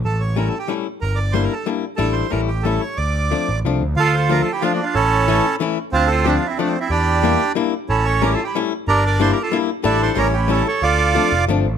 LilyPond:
<<
  \new Staff \with { instrumentName = "Bandoneon" } { \time 3/4 \key d \minor \tempo 4 = 184 << { a'8 cis''8 \tuplet 3/2 { bes'8 a'8 g'8 } r4 | bes'8 d''8 \tuplet 3/2 { c''8 bes'8 a'8 } r4 | a'8 c''8 bes'8 g'8 a'8 cis''8 | d''2 r4 |
a'8 c''8 \tuplet 3/2 { bes'8 a'8 g'8 f'8 d'8 f'8 } | a'2 r4 | f'8 a'8 \tuplet 3/2 { g'8 f'8 e'8 d'8 c'8 e'8 } | g'2 r4 |
a'8 cis''8 \tuplet 3/2 { bes'8 a'8 g'8 } r4 | bes'8 d''8 \tuplet 3/2 { c''8 bes'8 a'8 } r4 | a'8 c''8 bes'8 g'8 a'8 cis''8 | d''2 r4 | } \\ { r2. | r2. | r2. | r2. |
f'4. r4. | cis'2 r4 | c'4. r4. | d'2 r4 |
cis'4. r4. | d'4. r4. | d'4 cis'4. r8 | f'2 r4 | } >> }
  \new Staff \with { instrumentName = "Clarinet" } { \time 3/4 \key d \minor r2. | r2. | r2. | r2. |
f'8 a'8 \tuplet 3/2 { f'8 f'8 e'8 d'8 bes8 d'8 } | e'2 r4 | d'8 f'8 \tuplet 3/2 { d'8 d'8 c'8 a8 a8 c'8 } | e'2 r4 |
e'8 a'8 \tuplet 3/2 { g'8 f'8 e'8 } r4 | g'8 bes'8 \tuplet 3/2 { g'8 g'8 f'8 } r4 | e'8 a'8 g'8 e'8 e'8 a'8 | a'2 r4 | }
  \new Staff \with { instrumentName = "Hollow-body jazz guitar" } { \time 3/4 \key d \minor r4 <g a cis' e'>8 r8 <g a cis' e'>8 r8 | r4 <g bes d' e'>8 r8 <g bes d' e'>8 r8 | <g a d' e'>4 <g a cis' e'>8 r8 <g a cis' e'>8 r8 | r4 <f a c' d'>8 r8 <f a c' d'>8 r8 |
r4 <f a d' f'>8 r8 <f a d' f'>8 r8 | r4 <e a cis' e'>8 r8 <e a cis' e'>8 r8 | r4 <f a c' d'>8 r8 <f a c' d'>8 r8 | r4 <g bes d' e'>8 r8 <g bes d' e'>8 r8 |
r4 <g a cis' e'>8 r8 <g a cis' e'>8 r8 | r4 <g bes d' e'>8 r8 <g bes d' e'>8 r8 | <g a d' e'>4 <g a cis' e'>8 r8 <g a cis' e'>8 r8 | r4 <f a c' d'>8 r8 <f a c' d'>8 r8 | }
  \new Staff \with { instrumentName = "Picked electric bass" } { \clef bass \time 3/4 \key d \minor a,,2 r4 | g,,2 r4 | a,,4 a,,2 | d,4. a,,8 c,8 d,8 |
d,2 r4 | a,,2 r4 | d,2 r4 | e,2 r4 |
a,,2 r4 | g,,2 r4 | a,,4 a,,2 | d,4. f,,8 g,,8 a,,8 | }
>>